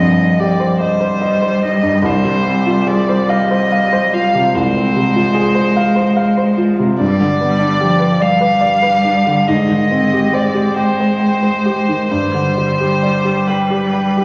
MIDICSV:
0, 0, Header, 1, 4, 480
1, 0, Start_track
1, 0, Tempo, 831025
1, 1187, Time_signature, 12, 3, 24, 8
1, 2632, Tempo, 814111
1, 5032, Tempo, 860832
1, 6472, Tempo, 906344
1, 8079, End_track
2, 0, Start_track
2, 0, Title_t, "Violin"
2, 0, Program_c, 0, 40
2, 0, Note_on_c, 0, 75, 58
2, 230, Note_on_c, 0, 74, 50
2, 239, Note_off_c, 0, 75, 0
2, 467, Note_off_c, 0, 74, 0
2, 471, Note_on_c, 0, 72, 47
2, 938, Note_off_c, 0, 72, 0
2, 947, Note_on_c, 0, 75, 51
2, 1187, Note_on_c, 0, 72, 54
2, 1196, Note_off_c, 0, 75, 0
2, 1660, Note_on_c, 0, 74, 54
2, 1668, Note_off_c, 0, 72, 0
2, 1903, Note_on_c, 0, 75, 63
2, 1912, Note_off_c, 0, 74, 0
2, 2391, Note_on_c, 0, 77, 62
2, 2400, Note_off_c, 0, 75, 0
2, 2629, Note_on_c, 0, 72, 62
2, 2638, Note_off_c, 0, 77, 0
2, 3835, Note_off_c, 0, 72, 0
2, 4079, Note_on_c, 0, 74, 70
2, 4788, Note_on_c, 0, 77, 66
2, 4797, Note_off_c, 0, 74, 0
2, 5510, Note_on_c, 0, 75, 54
2, 5519, Note_off_c, 0, 77, 0
2, 5991, Note_on_c, 0, 74, 51
2, 5999, Note_off_c, 0, 75, 0
2, 6231, Note_off_c, 0, 74, 0
2, 6235, Note_on_c, 0, 72, 51
2, 6930, Note_off_c, 0, 72, 0
2, 6935, Note_on_c, 0, 72, 57
2, 7672, Note_on_c, 0, 71, 42
2, 7680, Note_off_c, 0, 72, 0
2, 8079, Note_off_c, 0, 71, 0
2, 8079, End_track
3, 0, Start_track
3, 0, Title_t, "Grand piano"
3, 0, Program_c, 1, 0
3, 0, Control_c, 1, 64, 127
3, 0, Note_on_c, 1, 36, 32
3, 0, Note_on_c, 1, 43, 28
3, 0, Note_on_c, 1, 60, 29
3, 0, Note_on_c, 1, 63, 26
3, 0, Note_on_c, 1, 72, 31
3, 0, Note_on_c, 1, 75, 32
3, 64, Note_off_c, 1, 60, 0
3, 103, Note_off_c, 1, 63, 0
3, 103, Note_on_c, 1, 63, 33
3, 186, Note_off_c, 1, 43, 0
3, 231, Note_on_c, 1, 67, 35
3, 298, Note_off_c, 1, 63, 0
3, 346, Note_off_c, 1, 72, 0
3, 346, Note_on_c, 1, 72, 34
3, 422, Note_off_c, 1, 67, 0
3, 464, Note_off_c, 1, 75, 0
3, 464, Note_on_c, 1, 75, 35
3, 539, Note_off_c, 1, 72, 0
3, 580, Note_on_c, 1, 72, 33
3, 657, Note_off_c, 1, 75, 0
3, 702, Note_on_c, 1, 75, 37
3, 775, Note_off_c, 1, 72, 0
3, 821, Note_on_c, 1, 72, 35
3, 896, Note_off_c, 1, 75, 0
3, 933, Note_on_c, 1, 63, 34
3, 1016, Note_off_c, 1, 72, 0
3, 1056, Note_on_c, 1, 43, 29
3, 1132, Note_off_c, 1, 63, 0
3, 1160, Note_off_c, 1, 36, 0
3, 1169, Note_on_c, 1, 36, 43
3, 1182, Note_off_c, 1, 43, 0
3, 1197, Control_c, 1, 64, 0
3, 1277, Control_c, 1, 64, 127
3, 1296, Note_on_c, 1, 48, 30
3, 1418, Note_on_c, 1, 60, 32
3, 1494, Note_off_c, 1, 48, 0
3, 1538, Note_on_c, 1, 65, 33
3, 1614, Note_off_c, 1, 60, 0
3, 1657, Note_on_c, 1, 68, 31
3, 1734, Note_off_c, 1, 65, 0
3, 1784, Note_on_c, 1, 72, 39
3, 1854, Note_off_c, 1, 68, 0
3, 1902, Note_on_c, 1, 77, 42
3, 1979, Note_off_c, 1, 72, 0
3, 2026, Note_on_c, 1, 72, 38
3, 2100, Note_off_c, 1, 77, 0
3, 2149, Note_on_c, 1, 77, 40
3, 2223, Note_off_c, 1, 72, 0
3, 2268, Note_on_c, 1, 72, 42
3, 2345, Note_off_c, 1, 77, 0
3, 2388, Note_on_c, 1, 65, 29
3, 2463, Note_off_c, 1, 72, 0
3, 2510, Note_on_c, 1, 48, 32
3, 2581, Note_off_c, 1, 65, 0
3, 2599, Note_off_c, 1, 36, 0
3, 2629, Note_on_c, 1, 36, 39
3, 2702, Note_off_c, 1, 48, 0
3, 2753, Note_on_c, 1, 60, 33
3, 2868, Note_on_c, 1, 48, 31
3, 2943, Note_off_c, 1, 60, 0
3, 2984, Note_on_c, 1, 65, 35
3, 3060, Note_off_c, 1, 48, 0
3, 3097, Note_on_c, 1, 68, 43
3, 3176, Note_off_c, 1, 65, 0
3, 3216, Note_on_c, 1, 72, 38
3, 3293, Note_off_c, 1, 68, 0
3, 3345, Note_on_c, 1, 77, 42
3, 3413, Note_off_c, 1, 72, 0
3, 3458, Note_on_c, 1, 72, 39
3, 3540, Note_off_c, 1, 77, 0
3, 3581, Note_on_c, 1, 77, 41
3, 3660, Note_off_c, 1, 72, 0
3, 3704, Note_on_c, 1, 72, 38
3, 3783, Note_off_c, 1, 77, 0
3, 3821, Note_on_c, 1, 65, 36
3, 3905, Note_off_c, 1, 72, 0
3, 3951, Note_on_c, 1, 48, 30
3, 4022, Note_off_c, 1, 65, 0
3, 4053, Note_off_c, 1, 36, 0
3, 4069, Note_on_c, 1, 43, 45
3, 4074, Note_off_c, 1, 48, 0
3, 4087, Control_c, 1, 64, 0
3, 4175, Control_c, 1, 64, 127
3, 4194, Note_on_c, 1, 50, 31
3, 4313, Note_on_c, 1, 59, 34
3, 4385, Note_off_c, 1, 50, 0
3, 4422, Note_on_c, 1, 62, 37
3, 4503, Note_off_c, 1, 59, 0
3, 4547, Note_on_c, 1, 67, 36
3, 4617, Note_off_c, 1, 62, 0
3, 4659, Note_on_c, 1, 71, 35
3, 4739, Note_off_c, 1, 67, 0
3, 4781, Note_on_c, 1, 74, 38
3, 4856, Note_off_c, 1, 71, 0
3, 4901, Note_on_c, 1, 71, 37
3, 4978, Note_off_c, 1, 74, 0
3, 5020, Note_on_c, 1, 74, 39
3, 5098, Note_off_c, 1, 71, 0
3, 5141, Note_on_c, 1, 71, 37
3, 5215, Note_off_c, 1, 74, 0
3, 5264, Note_on_c, 1, 62, 31
3, 5336, Note_off_c, 1, 71, 0
3, 5388, Note_on_c, 1, 50, 28
3, 5458, Note_off_c, 1, 62, 0
3, 5482, Note_off_c, 1, 43, 0
3, 5509, Note_off_c, 1, 50, 0
3, 5510, Note_on_c, 1, 44, 42
3, 5518, Control_c, 1, 64, 0
3, 5595, Control_c, 1, 64, 127
3, 5622, Note_on_c, 1, 51, 29
3, 5747, Note_on_c, 1, 60, 30
3, 5819, Note_off_c, 1, 51, 0
3, 5873, Note_on_c, 1, 67, 32
3, 5942, Note_off_c, 1, 60, 0
3, 5983, Note_on_c, 1, 72, 34
3, 6065, Note_off_c, 1, 67, 0
3, 6100, Note_on_c, 1, 67, 31
3, 6180, Note_off_c, 1, 72, 0
3, 6223, Note_on_c, 1, 79, 33
3, 6297, Note_off_c, 1, 67, 0
3, 6355, Note_on_c, 1, 72, 30
3, 6419, Note_off_c, 1, 79, 0
3, 6464, Note_on_c, 1, 79, 33
3, 6542, Note_off_c, 1, 72, 0
3, 6587, Note_on_c, 1, 72, 30
3, 6653, Note_off_c, 1, 79, 0
3, 6708, Note_on_c, 1, 67, 31
3, 6774, Note_off_c, 1, 72, 0
3, 6830, Note_on_c, 1, 51, 27
3, 6896, Note_off_c, 1, 67, 0
3, 6922, Note_off_c, 1, 44, 0
3, 6946, Note_off_c, 1, 51, 0
3, 6950, Note_on_c, 1, 43, 37
3, 6953, Control_c, 1, 64, 0
3, 7038, Control_c, 1, 64, 127
3, 7073, Note_on_c, 1, 50, 27
3, 7195, Note_on_c, 1, 55, 29
3, 7263, Note_off_c, 1, 50, 0
3, 7314, Note_on_c, 1, 67, 28
3, 7385, Note_off_c, 1, 55, 0
3, 7436, Note_on_c, 1, 74, 26
3, 7505, Note_off_c, 1, 67, 0
3, 7550, Note_on_c, 1, 67, 25
3, 7626, Note_off_c, 1, 74, 0
3, 7675, Note_on_c, 1, 79, 33
3, 7742, Note_off_c, 1, 67, 0
3, 7793, Note_on_c, 1, 67, 31
3, 7865, Note_off_c, 1, 79, 0
3, 7915, Note_on_c, 1, 79, 30
3, 7984, Note_off_c, 1, 67, 0
3, 8042, Note_on_c, 1, 67, 29
3, 8079, Note_off_c, 1, 43, 0
3, 8079, Note_off_c, 1, 67, 0
3, 8079, Note_off_c, 1, 79, 0
3, 8079, End_track
4, 0, Start_track
4, 0, Title_t, "Cello"
4, 0, Program_c, 2, 42
4, 0, Note_on_c, 2, 53, 40
4, 466, Note_off_c, 2, 53, 0
4, 470, Note_on_c, 2, 55, 44
4, 2608, Note_off_c, 2, 55, 0
4, 2637, Note_on_c, 2, 56, 52
4, 4057, Note_off_c, 2, 56, 0
4, 4072, Note_on_c, 2, 55, 41
4, 4305, Note_off_c, 2, 55, 0
4, 4309, Note_on_c, 2, 55, 50
4, 4544, Note_off_c, 2, 55, 0
4, 4555, Note_on_c, 2, 53, 48
4, 4787, Note_on_c, 2, 55, 44
4, 4795, Note_off_c, 2, 53, 0
4, 5503, Note_on_c, 2, 56, 45
4, 5511, Note_off_c, 2, 55, 0
4, 6941, Note_on_c, 2, 55, 38
4, 6949, Note_off_c, 2, 56, 0
4, 8079, Note_off_c, 2, 55, 0
4, 8079, End_track
0, 0, End_of_file